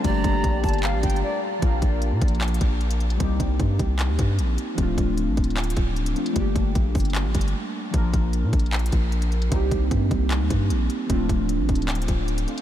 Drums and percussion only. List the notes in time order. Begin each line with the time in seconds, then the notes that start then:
0.04 kick, closed hi-hat
0.24 kick, closed hi-hat
0.44 kick, closed hi-hat
0.64 kick, closed hi-hat, open hi-hat
0.69 closed hi-hat
0.73 closed hi-hat
0.78 closed hi-hat
0.83 clap, closed hi-hat
1.03 kick, closed hi-hat
1.10 closed hi-hat
1.16 closed hi-hat
1.62 kick, closed hi-hat
1.82 kick, closed hi-hat
2.02 closed hi-hat
2.22 kick, closed hi-hat
2.28 closed hi-hat
2.35 closed hi-hat
2.41 clap, closed hi-hat
2.48 closed hi-hat
2.54 closed hi-hat
2.61 kick, closed hi-hat
2.81 closed hi-hat
2.91 closed hi-hat
3.00 closed hi-hat
3.10 closed hi-hat
3.20 kick, closed hi-hat
3.40 kick, closed hi-hat
3.60 kick, closed hi-hat
3.79 kick, closed hi-hat
3.99 clap, closed hi-hat
4.19 kick, closed hi-hat
4.39 closed hi-hat
4.58 closed hi-hat
4.78 kick, closed hi-hat
4.98 kick, closed hi-hat
5.18 closed hi-hat
5.37 kick, closed hi-hat
5.44 closed hi-hat
5.50 closed hi-hat
5.57 clap, closed hi-hat
5.64 closed hi-hat
5.70 closed hi-hat
5.77 kick, closed hi-hat
5.96 closed hi-hat
6.06 closed hi-hat
6.16 closed hi-hat
6.26 closed hi-hat
6.36 kick, closed hi-hat
6.56 kick, closed hi-hat
6.75 kick, closed hi-hat
6.95 kick, closed hi-hat, open hi-hat
7.00 closed hi-hat
7.05 closed hi-hat
7.10 closed hi-hat
7.15 clap, closed hi-hat
7.35 kick, closed hi-hat
7.41 closed hi-hat
7.48 closed hi-hat
7.94 kick, closed hi-hat
8.13 kick, closed hi-hat
8.33 closed hi-hat
8.53 kick, closed hi-hat
8.59 closed hi-hat
8.66 closed hi-hat
8.73 clap, closed hi-hat
8.79 closed hi-hat
8.86 closed hi-hat
8.92 kick, closed hi-hat
9.12 closed hi-hat
9.22 closed hi-hat
9.32 closed hi-hat
9.42 closed hi-hat
9.52 kick, closed hi-hat
9.71 kick, closed hi-hat
9.91 kick, closed hi-hat
10.11 kick, closed hi-hat
10.31 clap, closed hi-hat
10.50 kick, closed hi-hat
10.70 closed hi-hat
10.90 closed hi-hat
11.10 kick, closed hi-hat
11.29 kick, closed hi-hat
11.49 closed hi-hat
11.69 kick, closed hi-hat
11.75 closed hi-hat
11.82 closed hi-hat
11.88 clap, closed hi-hat
11.95 closed hi-hat
12.02 closed hi-hat
12.08 kick, closed hi-hat
12.28 closed hi-hat
12.38 closed hi-hat
12.48 closed hi-hat
12.58 closed hi-hat